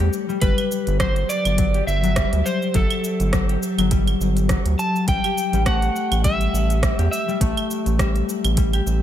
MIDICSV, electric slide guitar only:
0, 0, Header, 1, 2, 480
1, 0, Start_track
1, 0, Tempo, 582524
1, 345, Time_signature, 4, 2, 24, 8
1, 7437, End_track
2, 0, Start_track
2, 0, Title_t, "Electric slide guitar"
2, 0, Program_c, 0, 29
2, 343, Note_on_c, 0, 71, 92
2, 822, Note_off_c, 0, 71, 0
2, 826, Note_on_c, 0, 72, 97
2, 1064, Note_on_c, 0, 74, 99
2, 1073, Note_off_c, 0, 72, 0
2, 1540, Note_off_c, 0, 74, 0
2, 1543, Note_on_c, 0, 76, 115
2, 2024, Note_on_c, 0, 72, 92
2, 2039, Note_off_c, 0, 76, 0
2, 2269, Note_on_c, 0, 69, 86
2, 2272, Note_off_c, 0, 72, 0
2, 2954, Note_off_c, 0, 69, 0
2, 3949, Note_on_c, 0, 81, 97
2, 4187, Note_off_c, 0, 81, 0
2, 4190, Note_on_c, 0, 79, 114
2, 4662, Note_off_c, 0, 79, 0
2, 4666, Note_on_c, 0, 78, 99
2, 5142, Note_off_c, 0, 78, 0
2, 5145, Note_on_c, 0, 76, 97
2, 5832, Note_off_c, 0, 76, 0
2, 5863, Note_on_c, 0, 76, 75
2, 6311, Note_off_c, 0, 76, 0
2, 7437, End_track
0, 0, End_of_file